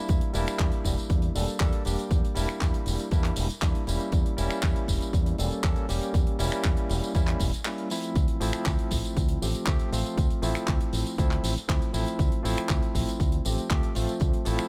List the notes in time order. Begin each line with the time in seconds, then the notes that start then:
Already playing: G3 A#3 D4 E4
0.08 E2, kick, closed hi-hat, tambourine
0.21 closed hi-hat
0.33 E1 G3 A#3 D4 E4, open hi-hat, tambourine
0.47 finger snap, closed hi-hat, tambourine
0.59 E2, kick, clap, closed hi-hat, tambourine
0.72 closed hi-hat
0.85 E1, kick, open hi-hat, tambourine
0.98 closed hi-hat, tambourine
1.10 E2, kick, closed hi-hat, tambourine
1.22 closed hi-hat
1.35 E1 G3 A#3 D4 A4, open hi-hat, tambourine
1.48 closed hi-hat, tambourine
1.60 E2 G3 A#3 D4 A4, kick, clap, closed hi-hat, tambourine
1.73 closed hi-hat
1.85 E1 G3 A#3 D4 G4, open hi-hat, tambourine
1.99 closed hi-hat, tambourine
2.11 E2, kick, closed hi-hat, tambourine
2.25 closed hi-hat
2.35 E1 G3 A#3 D4 E4, open hi-hat, tambourine
2.49 finger snap, closed hi-hat, tambourine
2.61 E2, kick, clap, closed hi-hat, tambourine
2.74 closed hi-hat
2.86 E1, open hi-hat, tambourine
2.99 closed hi-hat, tambourine
3.11 E2 G3 A#3 D4 E4, kick, closed hi-hat, tambourine
3.24 clap, closed hi-hat
3.36 E1, open hi-hat, tambourine
3.49 closed hi-hat, tambourine
3.62 E2 G3 A#3 D4 E4, kick, clap, closed hi-hat, tambourine
3.75 closed hi-hat
3.87 E1 G3 A#3 C#4 E4, open hi-hat, tambourine
4.00 closed hi-hat, tambourine
4.12 E2, kick, closed hi-hat, tambourine
4.26 closed hi-hat
4.37 E1 G3 A#3 C#4 E4, open hi-hat, tambourine
4.50 finger snap, muted fingered electric bass stroke, closed hi-hat, tambourine
4.63 E2, kick, clap, closed hi-hat, tambourine
4.76 closed hi-hat
4.88 E1, kick, open hi-hat, tambourine
5.01 closed hi-hat, tambourine
5.13 E2, kick, closed hi-hat, tambourine
5.26 closed hi-hat
5.38 E1 G3 A#3 C#4 A4, open hi-hat, tambourine
5.51 closed hi-hat, tambourine
5.63 E2 G3 A#3 C#4 A4, kick, clap, closed hi-hat, tambourine
5.76 closed hi-hat
5.88 E1 G3 A#3 C#4 G4, open hi-hat, tambourine
6.01 closed hi-hat, tambourine
6.14 E2, kick, closed hi-hat, tambourine
6.27 closed hi-hat
6.39 E1 G3 A#3 C#4 E4, open hi-hat, tambourine
6.52 finger snap, closed hi-hat, tambourine
6.64 E2, kick, clap, closed hi-hat, tambourine
6.77 closed hi-hat
6.89 E1, open hi-hat, tambourine
7.02 closed hi-hat, tambourine
7.15 E2 G3 A#3 C#4 E4, kick, closed hi-hat, tambourine
7.27 clap, closed hi-hat
7.40 E1, kick, open hi-hat, tambourine
7.53 muted fingered electric bass stroke, closed hi-hat, tambourine
7.65 G3 A#3 C#4 E4, clap, closed hi-hat, tambourine
7.78 closed hi-hat
7.90 F3 A3 C4 E4, open hi-hat, tambourine
8.03 closed hi-hat, tambourine
8.15 D2, kick, closed hi-hat, tambourine
8.28 closed hi-hat
8.40 A1 F3 A3 C4 E4, open hi-hat, tambourine
8.53 finger snap, closed hi-hat, tambourine
8.66 D2, kick, clap, closed hi-hat, tambourine
8.79 closed hi-hat
8.91 A1, kick, open hi-hat, tambourine
9.04 closed hi-hat, tambourine
9.17 D2, kick, closed hi-hat, tambourine
9.28 closed hi-hat
9.42 A1 F3 A3 C4 G4, open hi-hat, tambourine
9.54 muted fingered electric bass stroke, closed hi-hat, tambourine
9.66 D2 F3 A3 C4 G4, kick, clap, closed hi-hat, tambourine
9.79 closed hi-hat
9.92 A1 F3 A3 C4 F4, open hi-hat, tambourine
10.04 closed hi-hat, tambourine
10.17 D2, kick, closed hi-hat, tambourine
10.30 closed hi-hat
10.42 A1 F3 A3 C4 E4, open hi-hat, tambourine
10.55 finger snap, closed hi-hat, tambourine
10.68 D2, kick, clap, closed hi-hat, tambourine
10.81 closed hi-hat
10.93 A1, open hi-hat, tambourine
11.06 closed hi-hat, tambourine
11.18 D2 F3 A3 C4 E4, kick, closed hi-hat, tambourine
11.31 clap, closed hi-hat
11.43 A1, open hi-hat, tambourine
11.56 muted fingered electric bass stroke, closed hi-hat, tambourine
11.68 D2 F3 A3 C4 E4, kick, clap, closed hi-hat, tambourine
11.82 closed hi-hat
11.93 A1 F3 A3 C4 E4, open hi-hat, tambourine
12.07 closed hi-hat, tambourine
12.19 D2, kick, closed hi-hat, tambourine
12.32 closed hi-hat
12.43 A1 F3 A3 C4 E4, open hi-hat, tambourine
12.57 finger snap, closed hi-hat, tambourine
12.69 D2, kick, clap, closed hi-hat, tambourine
12.83 closed hi-hat
12.95 A1, kick, open hi-hat, tambourine
13.08 closed hi-hat, tambourine
13.20 D2, kick, closed hi-hat, tambourine
13.32 closed hi-hat
13.45 A1 F3 A3 C4 G4, open hi-hat, tambourine
13.58 muted fingered electric bass stroke, closed hi-hat, tambourine
13.70 D2 F3 A3 C4 G4, kick, clap, closed hi-hat, tambourine
13.83 closed hi-hat
13.95 A1 F3 A3 C4 F4, open hi-hat, tambourine
14.07 closed hi-hat, tambourine
14.20 D2, kick, closed hi-hat, tambourine
14.33 closed hi-hat
14.45 A1 F3 A3 C4 E4, open hi-hat, tambourine
14.58 finger snap, muted fingered electric bass stroke, closed hi-hat, tambourine